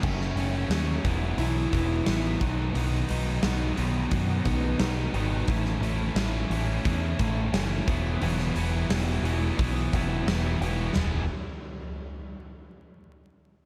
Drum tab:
CC |x---------------|----------------|----------------|----------------|
RD |----------------|----------------|----------------|----------------|
HH |--o-o-o-o-o-o-o-|o-o-o-o-o-o-o-o-|o-o-o-o-o-o-o-o-|o-o-o-o-o-o-o-o-|
SD |-o--o-------o---|----o-------o---|-o--o-------o---|-o--o-------o---|
FT |----------------|----------------|----------------|----------------|
BD |o-----o---o---o-|--------o-o-----|o-------o-o---o-|--------o-o-----|

CC |----------------|
RD |b---------------|
HH |----------------|
SD |o---------------|
FT |o---------------|
BD |----------------|